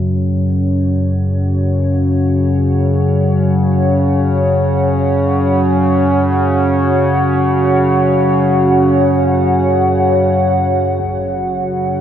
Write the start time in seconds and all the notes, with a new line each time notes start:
Already playing: F#2 C#3 F#4 C#5 F#5
10.99 F#2 C#3, impact